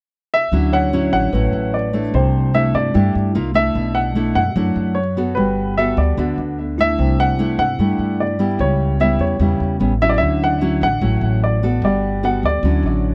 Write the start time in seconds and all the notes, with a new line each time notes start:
0.34 E5
0.52 D2 D3 F#3 C#4 E4
0.73 C#5 F#5
0.93 F#3 C#4 E4
1.13 A1 F#5
1.33 A1 A2 F#3 C#4 E4 B4
1.53 A1
1.74 D5
1.93 A3 D4 E4
2.14 C2 C3 C5
2.54 A3 D4 E4 E5
2.74 G2 D5
2.94 G2 G3 A3 D4 E4
3.15 G2
3.35 C2 A#3 D#4 F4
3.54 A3 D4 E4 E5
3.75 B1 B2
3.95 F#5
4.15 A3 D4 E4
4.35 F#2 F#5
4.56 F#2 F#3 A3 D4 E4
4.76 F#2
4.95 C#5
5.17 B3 F#4 A4
5.35 G1 G3 B4
5.78 B3 F#4 A4 E5
5.97 D2 D5
6.17 D2 D3 B3 F#4 A4
6.38 D2
6.78 A3 D4 E4 E5
6.98 C2 C3
7.20 F#5
7.39 A3 D4 E4
7.58 G2 F#5
7.79 G2 G3 A3 D4 E4
7.99 G2
8.20 D5
8.39 G3 B3 E4
8.59 C#2 C#3 C#5
9.00 G3 B3 E4 E5
9.19 E2 C#5
9.40 E2 C#3 G3 B3 E4
9.60 E2
9.80 A1 G3 B3 C#4
10.01 F#3 C#4 E4 E5
10.10 D5
10.18 D2 E5
10.22 D3
10.44 F#5
10.61 F#3 C#4 E4
10.81 A1 F#5
11.01 A1 A2 F#3 C#4 E4
11.21 A1
11.44 D5
11.63 B3 F#4 A4
11.82 G1 G3 D5
12.23 B3 F#4 A4 F#5
12.43 D2 D5
12.63 D2 D3 F#3 C#4 E4
12.83 A1